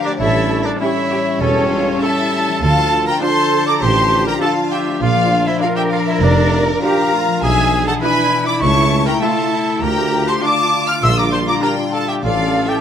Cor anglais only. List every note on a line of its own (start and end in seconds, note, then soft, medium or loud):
0.05 0.12 D4 medium
0.20 0.67 E4 medium
0.65 0.80 D4 medium
0.80 1.39 E4 medium
1.41 2.01 C#4 medium
2.03 2.62 A4 medium
2.63 3.06 A4 medium
3.07 3.14 A#4 medium
3.22 3.68 C5 medium
3.66 3.83 D5 medium
3.82 4.26 C5 medium
4.27 4.33 A#4 medium
4.41 4.55 A4 medium
4.72 5.01 G4 medium
5.02 5.45 F4 medium
5.47 5.64 E4 medium
5.63 5.78 F4 medium
5.76 5.91 G4 medium
5.93 5.99 F4 medium
6.08 6.24 E4 medium
6.23 6.62 D4 medium
6.84 7.39 A#4 medium
7.43 7.87 G#4 medium
7.87 7.94 A4 medium
8.02 8.46 B4 medium
8.48 8.62 D5 medium
8.63 9.05 C#5 medium
9.06 9.13 A#4 medium
9.22 9.81 A4 medium
9.82 10.29 A#4 medium
10.28 10.42 C5 medium
10.42 10.90 D5 medium
10.88 11.03 F5 medium
11.04 11.10 E5 medium
11.17 11.24 D5 medium
11.32 11.39 C5 medium
11.47 11.62 D5 medium
11.62 11.76 A#4 medium
11.93 12.10 A4 medium
12.08 12.23 G4 medium
12.24 12.71 F4 medium
12.69 12.81 G4 medium